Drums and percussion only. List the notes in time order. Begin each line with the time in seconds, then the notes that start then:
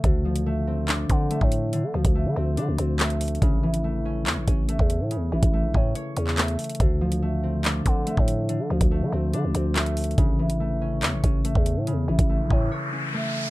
0.04 kick, closed hi-hat
0.36 closed hi-hat
0.88 clap, closed hi-hat
1.10 kick, closed hi-hat
1.31 closed hi-hat
1.41 kick
1.52 closed hi-hat
1.73 closed hi-hat
2.05 kick, closed hi-hat
2.57 closed hi-hat
2.78 closed hi-hat
3.00 clap, closed hi-hat
3.10 closed hi-hat
3.21 closed hi-hat, open hi-hat
3.28 closed hi-hat
3.35 closed hi-hat
3.42 kick, closed hi-hat
3.74 closed hi-hat
4.26 clap, closed hi-hat
4.48 kick, closed hi-hat
4.69 closed hi-hat
4.79 kick
4.90 closed hi-hat
5.11 closed hi-hat
5.43 kick, closed hi-hat
5.74 kick
5.95 closed hi-hat
6.17 closed hi-hat
6.27 clap
6.38 clap, closed hi-hat
6.48 closed hi-hat
6.59 closed hi-hat, open hi-hat
6.64 closed hi-hat
6.70 closed hi-hat
6.75 closed hi-hat
6.80 kick, closed hi-hat
7.12 closed hi-hat
7.65 clap, closed hi-hat
7.86 kick, closed hi-hat
8.07 closed hi-hat
8.17 kick
8.28 closed hi-hat
8.49 closed hi-hat
8.81 kick, closed hi-hat
9.34 closed hi-hat
9.55 closed hi-hat
9.76 clap, closed hi-hat
9.86 closed hi-hat
9.97 closed hi-hat, open hi-hat
10.04 closed hi-hat
10.11 closed hi-hat
10.18 kick, closed hi-hat
10.50 closed hi-hat
11.03 clap, closed hi-hat
11.24 kick, closed hi-hat
11.45 closed hi-hat
11.55 kick
11.66 closed hi-hat
11.87 closed hi-hat
12.19 kick, closed hi-hat
12.51 kick